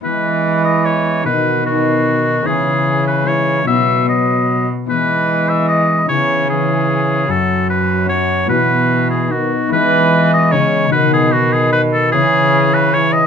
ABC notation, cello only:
X:1
M:3/4
L:1/8
Q:1/4=149
K:E
V:1 name="Cello" clef=bass
E,6 | B,,6 | C,6 | B,,4- B,, z |
E,6 | C,6 | F,,6 | B,,4- B,, z |
E,4 C,2 | B,,6 | C,6 |]